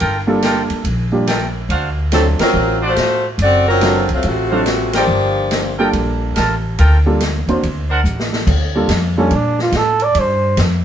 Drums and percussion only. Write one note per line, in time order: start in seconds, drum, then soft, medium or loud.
0.00 ride medium
0.42 snare medium
0.42 hi-hat pedal medium
0.42 ride medium
0.70 ride soft
0.85 ride medium
1.27 snare medium
1.27 hi-hat pedal medium
1.27 ride medium
1.70 ride medium
2.12 snare medium
2.12 hi-hat pedal medium
2.12 ride medium
2.39 snare medium
2.39 ride medium
2.96 snare medium
2.96 hi-hat pedal medium
2.96 ride medium
3.39 ride medium
3.81 snare medium
3.81 hi-hat pedal medium
3.81 ride medium
4.09 ride soft
4.23 ride medium
4.66 snare medium
4.66 hi-hat pedal medium
4.66 ride medium
4.93 snare medium
4.93 ride medium
5.51 snare medium
5.51 hi-hat pedal medium
5.51 ride medium
5.93 ride medium
6.36 snare medium
6.36 hi-hat pedal soft
6.36 ride medium
6.78 ride medium
7.20 snare medium
7.20 hi-hat pedal medium
7.20 ride medium
7.48 ride soft
7.63 ride medium
8.05 hi-hat pedal medium
8.20 snare medium
8.33 snare medium
8.47 kick medium
8.47 crash medium
8.89 snare medium
8.89 hi-hat pedal medium
8.89 ride medium
9.31 ride medium
9.59 snare soft
9.72 snare medium
9.72 hi-hat pedal soft
9.72 ride medium
10.00 ride soft
10.15 ride medium
10.57 snare medium
10.57 hi-hat pedal medium
10.57 ride medium